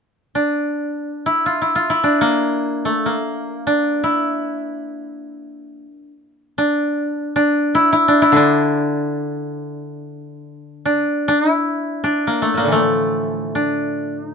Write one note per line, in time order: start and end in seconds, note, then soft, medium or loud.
0.35 2.03 D4 medium
1.26 1.52 E4 medium
1.46 1.68 F4 medium
1.62 1.82 E4 soft
1.76 1.96 F4 medium
1.90 4.03 E4 medium
2.04 3.66 D4 medium
2.21 2.91 A#3 medium
2.85 3.12 A3 soft
3.06 5.84 A#3 soft
3.67 6.09 D4 medium
4.04 6.30 E4 medium
6.58 7.35 D4 medium
7.36 8.08 D4 medium
7.75 7.92 E4 medium
7.93 8.22 E4 medium
8.08 8.36 D4 medium
8.22 10.48 E4 medium
8.32 11.01 D3 soft
8.36 10.79 D4 medium
10.85 11.28 D4 medium
11.28 11.50 D4 medium
11.50 12.77 E4 medium
12.04 13.55 D4 medium
12.27 12.48 A#3 soft
12.42 12.63 A3 soft
12.54 14.34 A2 soft
12.54 12.78 A#3 medium
12.58 12.78 A#2 soft
12.64 14.34 D3 soft
12.64 13.61 E3 soft
12.71 14.34 F3 soft
12.71 14.34 A3 medium
13.55 14.24 D4 soft
14.24 14.34 D#4 soft